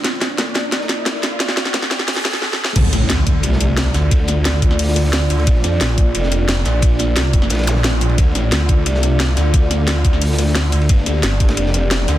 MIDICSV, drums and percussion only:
0, 0, Header, 1, 2, 480
1, 0, Start_track
1, 0, Key_signature, -1, "minor"
1, 0, Tempo, 338983
1, 65, Time_signature, 4, 2, 24, 8
1, 17251, End_track
2, 0, Start_track
2, 0, Title_t, "Drums"
2, 63, Note_on_c, 9, 38, 74
2, 63, Note_on_c, 9, 42, 93
2, 70, Note_on_c, 9, 51, 91
2, 205, Note_off_c, 9, 38, 0
2, 205, Note_off_c, 9, 42, 0
2, 211, Note_off_c, 9, 51, 0
2, 303, Note_on_c, 9, 38, 76
2, 303, Note_on_c, 9, 42, 66
2, 314, Note_on_c, 9, 51, 63
2, 445, Note_off_c, 9, 38, 0
2, 445, Note_off_c, 9, 42, 0
2, 455, Note_off_c, 9, 51, 0
2, 544, Note_on_c, 9, 38, 127
2, 544, Note_on_c, 9, 42, 92
2, 549, Note_on_c, 9, 51, 86
2, 685, Note_off_c, 9, 42, 0
2, 686, Note_off_c, 9, 38, 0
2, 690, Note_off_c, 9, 51, 0
2, 773, Note_on_c, 9, 51, 69
2, 784, Note_on_c, 9, 38, 77
2, 784, Note_on_c, 9, 42, 61
2, 915, Note_off_c, 9, 51, 0
2, 925, Note_off_c, 9, 38, 0
2, 925, Note_off_c, 9, 42, 0
2, 1023, Note_on_c, 9, 38, 81
2, 1023, Note_on_c, 9, 42, 86
2, 1025, Note_on_c, 9, 51, 96
2, 1145, Note_off_c, 9, 38, 0
2, 1145, Note_on_c, 9, 38, 47
2, 1165, Note_off_c, 9, 42, 0
2, 1166, Note_off_c, 9, 51, 0
2, 1264, Note_off_c, 9, 38, 0
2, 1264, Note_on_c, 9, 38, 88
2, 1264, Note_on_c, 9, 42, 69
2, 1267, Note_on_c, 9, 51, 71
2, 1405, Note_off_c, 9, 38, 0
2, 1405, Note_off_c, 9, 42, 0
2, 1408, Note_off_c, 9, 51, 0
2, 1495, Note_on_c, 9, 38, 120
2, 1503, Note_on_c, 9, 51, 94
2, 1504, Note_off_c, 9, 38, 0
2, 1504, Note_on_c, 9, 38, 89
2, 1504, Note_on_c, 9, 42, 90
2, 1622, Note_off_c, 9, 38, 0
2, 1622, Note_on_c, 9, 38, 47
2, 1644, Note_off_c, 9, 51, 0
2, 1646, Note_off_c, 9, 42, 0
2, 1743, Note_on_c, 9, 51, 67
2, 1744, Note_off_c, 9, 38, 0
2, 1744, Note_on_c, 9, 38, 87
2, 1744, Note_on_c, 9, 42, 66
2, 1751, Note_off_c, 9, 38, 0
2, 1751, Note_on_c, 9, 38, 51
2, 1885, Note_off_c, 9, 51, 0
2, 1886, Note_off_c, 9, 42, 0
2, 1893, Note_off_c, 9, 38, 0
2, 1984, Note_on_c, 9, 38, 89
2, 1984, Note_on_c, 9, 42, 88
2, 1992, Note_on_c, 9, 51, 91
2, 2104, Note_off_c, 9, 38, 0
2, 2104, Note_on_c, 9, 38, 79
2, 2125, Note_off_c, 9, 42, 0
2, 2134, Note_off_c, 9, 51, 0
2, 2224, Note_off_c, 9, 38, 0
2, 2224, Note_on_c, 9, 38, 95
2, 2224, Note_on_c, 9, 42, 66
2, 2225, Note_on_c, 9, 51, 73
2, 2343, Note_off_c, 9, 38, 0
2, 2343, Note_on_c, 9, 38, 91
2, 2366, Note_off_c, 9, 42, 0
2, 2367, Note_off_c, 9, 51, 0
2, 2459, Note_on_c, 9, 51, 98
2, 2464, Note_off_c, 9, 38, 0
2, 2464, Note_on_c, 9, 38, 101
2, 2464, Note_on_c, 9, 42, 93
2, 2470, Note_off_c, 9, 38, 0
2, 2470, Note_on_c, 9, 38, 127
2, 2584, Note_off_c, 9, 38, 0
2, 2584, Note_on_c, 9, 38, 92
2, 2601, Note_off_c, 9, 51, 0
2, 2606, Note_off_c, 9, 42, 0
2, 2705, Note_off_c, 9, 38, 0
2, 2705, Note_on_c, 9, 38, 97
2, 2705, Note_on_c, 9, 42, 61
2, 2708, Note_on_c, 9, 51, 69
2, 2825, Note_off_c, 9, 38, 0
2, 2825, Note_on_c, 9, 38, 89
2, 2846, Note_off_c, 9, 42, 0
2, 2850, Note_off_c, 9, 51, 0
2, 2937, Note_on_c, 9, 46, 83
2, 2945, Note_off_c, 9, 38, 0
2, 2945, Note_on_c, 9, 38, 98
2, 2945, Note_on_c, 9, 42, 88
2, 3062, Note_off_c, 9, 38, 0
2, 3062, Note_on_c, 9, 38, 45
2, 3065, Note_off_c, 9, 38, 0
2, 3065, Note_on_c, 9, 38, 91
2, 3078, Note_off_c, 9, 46, 0
2, 3087, Note_off_c, 9, 42, 0
2, 3186, Note_off_c, 9, 38, 0
2, 3186, Note_on_c, 9, 38, 111
2, 3186, Note_on_c, 9, 42, 65
2, 3191, Note_on_c, 9, 51, 67
2, 3193, Note_off_c, 9, 38, 0
2, 3193, Note_on_c, 9, 38, 56
2, 3299, Note_off_c, 9, 38, 0
2, 3299, Note_on_c, 9, 38, 39
2, 3306, Note_off_c, 9, 38, 0
2, 3306, Note_on_c, 9, 38, 89
2, 3327, Note_off_c, 9, 42, 0
2, 3332, Note_off_c, 9, 51, 0
2, 3426, Note_off_c, 9, 38, 0
2, 3426, Note_on_c, 9, 38, 68
2, 3568, Note_off_c, 9, 38, 0
2, 3585, Note_on_c, 9, 38, 86
2, 3727, Note_off_c, 9, 38, 0
2, 3746, Note_on_c, 9, 38, 93
2, 3887, Note_off_c, 9, 38, 0
2, 3905, Note_on_c, 9, 36, 115
2, 3905, Note_on_c, 9, 42, 94
2, 3905, Note_on_c, 9, 49, 104
2, 3915, Note_on_c, 9, 51, 83
2, 4047, Note_off_c, 9, 36, 0
2, 4047, Note_off_c, 9, 42, 0
2, 4047, Note_off_c, 9, 49, 0
2, 4057, Note_off_c, 9, 51, 0
2, 4146, Note_on_c, 9, 40, 34
2, 4146, Note_on_c, 9, 42, 72
2, 4147, Note_on_c, 9, 51, 64
2, 4288, Note_off_c, 9, 40, 0
2, 4288, Note_off_c, 9, 42, 0
2, 4288, Note_off_c, 9, 51, 0
2, 4381, Note_on_c, 9, 38, 117
2, 4386, Note_off_c, 9, 38, 0
2, 4386, Note_on_c, 9, 38, 123
2, 4386, Note_on_c, 9, 42, 101
2, 4386, Note_on_c, 9, 51, 90
2, 4528, Note_off_c, 9, 38, 0
2, 4528, Note_off_c, 9, 42, 0
2, 4528, Note_off_c, 9, 51, 0
2, 4625, Note_on_c, 9, 42, 67
2, 4626, Note_on_c, 9, 36, 103
2, 4629, Note_on_c, 9, 51, 70
2, 4767, Note_off_c, 9, 36, 0
2, 4767, Note_off_c, 9, 42, 0
2, 4771, Note_off_c, 9, 51, 0
2, 4857, Note_on_c, 9, 51, 91
2, 4865, Note_on_c, 9, 42, 95
2, 4992, Note_on_c, 9, 38, 44
2, 4999, Note_off_c, 9, 51, 0
2, 5007, Note_off_c, 9, 42, 0
2, 5105, Note_on_c, 9, 42, 73
2, 5111, Note_on_c, 9, 51, 69
2, 5134, Note_off_c, 9, 38, 0
2, 5247, Note_off_c, 9, 42, 0
2, 5253, Note_off_c, 9, 51, 0
2, 5345, Note_on_c, 9, 38, 117
2, 5345, Note_on_c, 9, 42, 99
2, 5346, Note_on_c, 9, 51, 88
2, 5348, Note_off_c, 9, 38, 0
2, 5348, Note_on_c, 9, 38, 120
2, 5463, Note_off_c, 9, 38, 0
2, 5463, Note_on_c, 9, 38, 51
2, 5486, Note_off_c, 9, 42, 0
2, 5487, Note_off_c, 9, 51, 0
2, 5581, Note_on_c, 9, 51, 69
2, 5582, Note_off_c, 9, 38, 0
2, 5582, Note_on_c, 9, 38, 60
2, 5585, Note_on_c, 9, 40, 37
2, 5585, Note_on_c, 9, 46, 75
2, 5723, Note_off_c, 9, 38, 0
2, 5723, Note_off_c, 9, 51, 0
2, 5727, Note_off_c, 9, 40, 0
2, 5727, Note_off_c, 9, 46, 0
2, 5825, Note_on_c, 9, 36, 126
2, 5825, Note_on_c, 9, 42, 90
2, 5834, Note_on_c, 9, 51, 95
2, 5967, Note_off_c, 9, 36, 0
2, 5967, Note_off_c, 9, 42, 0
2, 5975, Note_off_c, 9, 51, 0
2, 6054, Note_on_c, 9, 51, 64
2, 6066, Note_on_c, 9, 40, 36
2, 6066, Note_on_c, 9, 42, 69
2, 6196, Note_off_c, 9, 51, 0
2, 6207, Note_off_c, 9, 40, 0
2, 6207, Note_off_c, 9, 42, 0
2, 6305, Note_on_c, 9, 38, 127
2, 6305, Note_on_c, 9, 42, 100
2, 6311, Note_off_c, 9, 38, 0
2, 6311, Note_on_c, 9, 38, 127
2, 6318, Note_on_c, 9, 51, 105
2, 6447, Note_off_c, 9, 42, 0
2, 6452, Note_off_c, 9, 38, 0
2, 6459, Note_off_c, 9, 51, 0
2, 6545, Note_on_c, 9, 36, 110
2, 6545, Note_on_c, 9, 42, 65
2, 6547, Note_on_c, 9, 51, 68
2, 6666, Note_on_c, 9, 40, 35
2, 6687, Note_off_c, 9, 36, 0
2, 6687, Note_off_c, 9, 42, 0
2, 6689, Note_off_c, 9, 51, 0
2, 6785, Note_on_c, 9, 42, 92
2, 6786, Note_on_c, 9, 46, 87
2, 6807, Note_off_c, 9, 40, 0
2, 6911, Note_on_c, 9, 38, 46
2, 6927, Note_off_c, 9, 42, 0
2, 6928, Note_off_c, 9, 46, 0
2, 7018, Note_off_c, 9, 38, 0
2, 7018, Note_on_c, 9, 38, 59
2, 7026, Note_on_c, 9, 42, 69
2, 7028, Note_on_c, 9, 51, 65
2, 7145, Note_off_c, 9, 38, 0
2, 7145, Note_on_c, 9, 38, 38
2, 7167, Note_off_c, 9, 42, 0
2, 7170, Note_off_c, 9, 51, 0
2, 7265, Note_off_c, 9, 38, 0
2, 7265, Note_on_c, 9, 38, 124
2, 7265, Note_on_c, 9, 42, 92
2, 7269, Note_on_c, 9, 51, 89
2, 7271, Note_off_c, 9, 38, 0
2, 7271, Note_on_c, 9, 38, 112
2, 7376, Note_off_c, 9, 38, 0
2, 7376, Note_on_c, 9, 38, 40
2, 7406, Note_off_c, 9, 42, 0
2, 7411, Note_off_c, 9, 51, 0
2, 7506, Note_on_c, 9, 46, 77
2, 7508, Note_on_c, 9, 51, 68
2, 7518, Note_off_c, 9, 38, 0
2, 7638, Note_off_c, 9, 51, 0
2, 7638, Note_on_c, 9, 51, 44
2, 7648, Note_off_c, 9, 46, 0
2, 7745, Note_on_c, 9, 36, 126
2, 7746, Note_on_c, 9, 42, 88
2, 7751, Note_off_c, 9, 51, 0
2, 7751, Note_on_c, 9, 51, 86
2, 7887, Note_off_c, 9, 36, 0
2, 7888, Note_off_c, 9, 42, 0
2, 7893, Note_off_c, 9, 51, 0
2, 7985, Note_on_c, 9, 51, 65
2, 7986, Note_on_c, 9, 40, 34
2, 7986, Note_on_c, 9, 42, 68
2, 8127, Note_off_c, 9, 40, 0
2, 8127, Note_off_c, 9, 42, 0
2, 8127, Note_off_c, 9, 51, 0
2, 8225, Note_on_c, 9, 38, 127
2, 8225, Note_on_c, 9, 42, 92
2, 8229, Note_off_c, 9, 38, 0
2, 8229, Note_on_c, 9, 38, 127
2, 8229, Note_on_c, 9, 51, 98
2, 8367, Note_off_c, 9, 42, 0
2, 8370, Note_off_c, 9, 38, 0
2, 8371, Note_off_c, 9, 51, 0
2, 8465, Note_on_c, 9, 36, 116
2, 8465, Note_on_c, 9, 42, 64
2, 8466, Note_on_c, 9, 51, 68
2, 8606, Note_off_c, 9, 36, 0
2, 8607, Note_off_c, 9, 42, 0
2, 8608, Note_off_c, 9, 51, 0
2, 8704, Note_on_c, 9, 42, 92
2, 8707, Note_on_c, 9, 51, 96
2, 8821, Note_on_c, 9, 38, 42
2, 8846, Note_off_c, 9, 42, 0
2, 8848, Note_off_c, 9, 51, 0
2, 8945, Note_on_c, 9, 42, 67
2, 8949, Note_on_c, 9, 51, 65
2, 8963, Note_off_c, 9, 38, 0
2, 9086, Note_off_c, 9, 42, 0
2, 9090, Note_off_c, 9, 51, 0
2, 9185, Note_on_c, 9, 38, 126
2, 9185, Note_on_c, 9, 42, 86
2, 9185, Note_on_c, 9, 51, 91
2, 9196, Note_off_c, 9, 38, 0
2, 9196, Note_on_c, 9, 38, 110
2, 9305, Note_off_c, 9, 38, 0
2, 9305, Note_on_c, 9, 38, 44
2, 9326, Note_off_c, 9, 42, 0
2, 9326, Note_off_c, 9, 51, 0
2, 9412, Note_off_c, 9, 38, 0
2, 9412, Note_on_c, 9, 38, 51
2, 9416, Note_on_c, 9, 51, 73
2, 9426, Note_on_c, 9, 40, 36
2, 9426, Note_on_c, 9, 46, 81
2, 9554, Note_off_c, 9, 38, 0
2, 9558, Note_off_c, 9, 51, 0
2, 9567, Note_off_c, 9, 40, 0
2, 9567, Note_off_c, 9, 46, 0
2, 9658, Note_on_c, 9, 51, 85
2, 9665, Note_on_c, 9, 36, 127
2, 9666, Note_on_c, 9, 42, 88
2, 9800, Note_off_c, 9, 51, 0
2, 9807, Note_off_c, 9, 36, 0
2, 9808, Note_off_c, 9, 42, 0
2, 9897, Note_on_c, 9, 51, 67
2, 9907, Note_on_c, 9, 40, 35
2, 9907, Note_on_c, 9, 42, 64
2, 10038, Note_off_c, 9, 51, 0
2, 10049, Note_off_c, 9, 40, 0
2, 10049, Note_off_c, 9, 42, 0
2, 10135, Note_on_c, 9, 51, 98
2, 10146, Note_on_c, 9, 38, 127
2, 10146, Note_on_c, 9, 42, 93
2, 10151, Note_off_c, 9, 38, 0
2, 10151, Note_on_c, 9, 38, 127
2, 10276, Note_off_c, 9, 51, 0
2, 10288, Note_off_c, 9, 42, 0
2, 10292, Note_off_c, 9, 38, 0
2, 10382, Note_on_c, 9, 51, 72
2, 10385, Note_on_c, 9, 36, 108
2, 10386, Note_on_c, 9, 42, 60
2, 10506, Note_on_c, 9, 40, 35
2, 10524, Note_off_c, 9, 51, 0
2, 10527, Note_off_c, 9, 36, 0
2, 10528, Note_off_c, 9, 42, 0
2, 10614, Note_on_c, 9, 51, 71
2, 10626, Note_on_c, 9, 42, 89
2, 10630, Note_on_c, 9, 38, 93
2, 10648, Note_off_c, 9, 40, 0
2, 10687, Note_off_c, 9, 51, 0
2, 10687, Note_on_c, 9, 51, 69
2, 10696, Note_off_c, 9, 38, 0
2, 10696, Note_on_c, 9, 38, 89
2, 10739, Note_off_c, 9, 38, 0
2, 10739, Note_on_c, 9, 38, 90
2, 10745, Note_off_c, 9, 51, 0
2, 10745, Note_on_c, 9, 51, 61
2, 10767, Note_off_c, 9, 42, 0
2, 10808, Note_off_c, 9, 38, 0
2, 10808, Note_on_c, 9, 38, 93
2, 10810, Note_off_c, 9, 51, 0
2, 10810, Note_on_c, 9, 51, 67
2, 10866, Note_off_c, 9, 38, 0
2, 10866, Note_on_c, 9, 38, 58
2, 10866, Note_on_c, 9, 42, 63
2, 10869, Note_off_c, 9, 51, 0
2, 10869, Note_on_c, 9, 51, 72
2, 10982, Note_off_c, 9, 38, 0
2, 10982, Note_on_c, 9, 38, 36
2, 11008, Note_off_c, 9, 42, 0
2, 11011, Note_off_c, 9, 51, 0
2, 11099, Note_on_c, 9, 51, 82
2, 11106, Note_off_c, 9, 38, 0
2, 11106, Note_on_c, 9, 38, 121
2, 11106, Note_on_c, 9, 42, 90
2, 11116, Note_off_c, 9, 38, 0
2, 11116, Note_on_c, 9, 38, 125
2, 11235, Note_off_c, 9, 38, 0
2, 11235, Note_on_c, 9, 38, 46
2, 11241, Note_off_c, 9, 51, 0
2, 11247, Note_off_c, 9, 42, 0
2, 11346, Note_on_c, 9, 46, 81
2, 11361, Note_on_c, 9, 51, 62
2, 11377, Note_off_c, 9, 38, 0
2, 11459, Note_off_c, 9, 51, 0
2, 11459, Note_on_c, 9, 51, 45
2, 11487, Note_off_c, 9, 46, 0
2, 11585, Note_on_c, 9, 42, 91
2, 11586, Note_on_c, 9, 36, 124
2, 11595, Note_off_c, 9, 51, 0
2, 11595, Note_on_c, 9, 51, 90
2, 11726, Note_off_c, 9, 42, 0
2, 11727, Note_off_c, 9, 36, 0
2, 11737, Note_off_c, 9, 51, 0
2, 11826, Note_on_c, 9, 40, 33
2, 11826, Note_on_c, 9, 42, 66
2, 11832, Note_on_c, 9, 51, 66
2, 11968, Note_off_c, 9, 40, 0
2, 11968, Note_off_c, 9, 42, 0
2, 11974, Note_off_c, 9, 51, 0
2, 12060, Note_on_c, 9, 51, 107
2, 12066, Note_on_c, 9, 38, 123
2, 12066, Note_on_c, 9, 42, 94
2, 12072, Note_off_c, 9, 38, 0
2, 12072, Note_on_c, 9, 38, 127
2, 12202, Note_off_c, 9, 51, 0
2, 12207, Note_off_c, 9, 42, 0
2, 12213, Note_off_c, 9, 38, 0
2, 12300, Note_on_c, 9, 51, 66
2, 12306, Note_on_c, 9, 36, 104
2, 12306, Note_on_c, 9, 42, 60
2, 12442, Note_off_c, 9, 51, 0
2, 12447, Note_off_c, 9, 36, 0
2, 12448, Note_off_c, 9, 42, 0
2, 12547, Note_on_c, 9, 42, 89
2, 12548, Note_on_c, 9, 51, 95
2, 12664, Note_on_c, 9, 38, 45
2, 12688, Note_off_c, 9, 42, 0
2, 12690, Note_off_c, 9, 51, 0
2, 12787, Note_on_c, 9, 42, 66
2, 12787, Note_on_c, 9, 51, 67
2, 12805, Note_off_c, 9, 38, 0
2, 12929, Note_off_c, 9, 42, 0
2, 12929, Note_off_c, 9, 51, 0
2, 13022, Note_on_c, 9, 38, 118
2, 13024, Note_on_c, 9, 51, 80
2, 13026, Note_off_c, 9, 38, 0
2, 13026, Note_on_c, 9, 38, 114
2, 13026, Note_on_c, 9, 42, 89
2, 13149, Note_off_c, 9, 38, 0
2, 13149, Note_on_c, 9, 38, 44
2, 13165, Note_off_c, 9, 51, 0
2, 13168, Note_off_c, 9, 42, 0
2, 13255, Note_off_c, 9, 38, 0
2, 13255, Note_on_c, 9, 38, 59
2, 13267, Note_on_c, 9, 40, 35
2, 13267, Note_on_c, 9, 46, 86
2, 13267, Note_on_c, 9, 51, 63
2, 13397, Note_off_c, 9, 38, 0
2, 13408, Note_off_c, 9, 40, 0
2, 13408, Note_off_c, 9, 46, 0
2, 13409, Note_off_c, 9, 51, 0
2, 13504, Note_on_c, 9, 51, 88
2, 13505, Note_on_c, 9, 36, 118
2, 13506, Note_on_c, 9, 42, 93
2, 13646, Note_off_c, 9, 51, 0
2, 13647, Note_off_c, 9, 36, 0
2, 13648, Note_off_c, 9, 42, 0
2, 13746, Note_on_c, 9, 40, 32
2, 13746, Note_on_c, 9, 42, 65
2, 13747, Note_on_c, 9, 51, 67
2, 13888, Note_off_c, 9, 40, 0
2, 13888, Note_off_c, 9, 42, 0
2, 13889, Note_off_c, 9, 51, 0
2, 13980, Note_on_c, 9, 51, 102
2, 13982, Note_on_c, 9, 38, 127
2, 13985, Note_off_c, 9, 38, 0
2, 13985, Note_on_c, 9, 38, 119
2, 13985, Note_on_c, 9, 42, 98
2, 14121, Note_off_c, 9, 51, 0
2, 14127, Note_off_c, 9, 38, 0
2, 14127, Note_off_c, 9, 42, 0
2, 14225, Note_on_c, 9, 36, 103
2, 14226, Note_on_c, 9, 42, 61
2, 14237, Note_on_c, 9, 51, 69
2, 14346, Note_on_c, 9, 40, 32
2, 14367, Note_off_c, 9, 36, 0
2, 14367, Note_off_c, 9, 42, 0
2, 14378, Note_off_c, 9, 51, 0
2, 14465, Note_on_c, 9, 42, 90
2, 14467, Note_on_c, 9, 46, 83
2, 14487, Note_off_c, 9, 40, 0
2, 14598, Note_on_c, 9, 38, 53
2, 14607, Note_off_c, 9, 42, 0
2, 14609, Note_off_c, 9, 46, 0
2, 14706, Note_on_c, 9, 42, 68
2, 14708, Note_off_c, 9, 38, 0
2, 14708, Note_on_c, 9, 38, 60
2, 14708, Note_on_c, 9, 51, 63
2, 14822, Note_off_c, 9, 38, 0
2, 14822, Note_on_c, 9, 38, 37
2, 14847, Note_off_c, 9, 42, 0
2, 14850, Note_off_c, 9, 51, 0
2, 14935, Note_off_c, 9, 38, 0
2, 14935, Note_on_c, 9, 38, 117
2, 14943, Note_on_c, 9, 51, 81
2, 14946, Note_off_c, 9, 38, 0
2, 14946, Note_on_c, 9, 38, 111
2, 14946, Note_on_c, 9, 42, 91
2, 15067, Note_off_c, 9, 38, 0
2, 15067, Note_on_c, 9, 38, 41
2, 15085, Note_off_c, 9, 51, 0
2, 15087, Note_off_c, 9, 42, 0
2, 15178, Note_on_c, 9, 51, 74
2, 15185, Note_on_c, 9, 46, 84
2, 15209, Note_off_c, 9, 38, 0
2, 15313, Note_off_c, 9, 51, 0
2, 15313, Note_on_c, 9, 51, 49
2, 15326, Note_off_c, 9, 46, 0
2, 15425, Note_on_c, 9, 36, 115
2, 15425, Note_on_c, 9, 42, 89
2, 15431, Note_off_c, 9, 51, 0
2, 15431, Note_on_c, 9, 51, 87
2, 15566, Note_off_c, 9, 42, 0
2, 15567, Note_off_c, 9, 36, 0
2, 15573, Note_off_c, 9, 51, 0
2, 15664, Note_on_c, 9, 51, 67
2, 15665, Note_on_c, 9, 40, 34
2, 15665, Note_on_c, 9, 42, 69
2, 15805, Note_off_c, 9, 51, 0
2, 15807, Note_off_c, 9, 40, 0
2, 15807, Note_off_c, 9, 42, 0
2, 15902, Note_on_c, 9, 51, 105
2, 15903, Note_on_c, 9, 38, 127
2, 15905, Note_off_c, 9, 38, 0
2, 15905, Note_on_c, 9, 38, 121
2, 15905, Note_on_c, 9, 42, 103
2, 16044, Note_off_c, 9, 51, 0
2, 16047, Note_off_c, 9, 38, 0
2, 16047, Note_off_c, 9, 42, 0
2, 16146, Note_on_c, 9, 36, 101
2, 16146, Note_on_c, 9, 42, 67
2, 16151, Note_on_c, 9, 51, 82
2, 16262, Note_off_c, 9, 51, 0
2, 16262, Note_on_c, 9, 51, 85
2, 16269, Note_on_c, 9, 38, 107
2, 16287, Note_off_c, 9, 42, 0
2, 16288, Note_off_c, 9, 36, 0
2, 16383, Note_off_c, 9, 51, 0
2, 16383, Note_on_c, 9, 51, 86
2, 16386, Note_on_c, 9, 42, 99
2, 16411, Note_off_c, 9, 38, 0
2, 16508, Note_on_c, 9, 38, 45
2, 16525, Note_off_c, 9, 51, 0
2, 16528, Note_off_c, 9, 42, 0
2, 16625, Note_on_c, 9, 42, 72
2, 16636, Note_on_c, 9, 51, 65
2, 16650, Note_off_c, 9, 38, 0
2, 16767, Note_off_c, 9, 42, 0
2, 16777, Note_off_c, 9, 51, 0
2, 16865, Note_on_c, 9, 38, 114
2, 16865, Note_on_c, 9, 42, 92
2, 16871, Note_off_c, 9, 38, 0
2, 16871, Note_on_c, 9, 38, 111
2, 16873, Note_on_c, 9, 51, 85
2, 16988, Note_off_c, 9, 38, 0
2, 16988, Note_on_c, 9, 38, 47
2, 17007, Note_off_c, 9, 42, 0
2, 17015, Note_off_c, 9, 51, 0
2, 17098, Note_off_c, 9, 38, 0
2, 17098, Note_on_c, 9, 38, 55
2, 17106, Note_on_c, 9, 40, 37
2, 17106, Note_on_c, 9, 46, 78
2, 17112, Note_on_c, 9, 51, 69
2, 17239, Note_off_c, 9, 38, 0
2, 17247, Note_off_c, 9, 40, 0
2, 17247, Note_off_c, 9, 46, 0
2, 17251, Note_off_c, 9, 51, 0
2, 17251, End_track
0, 0, End_of_file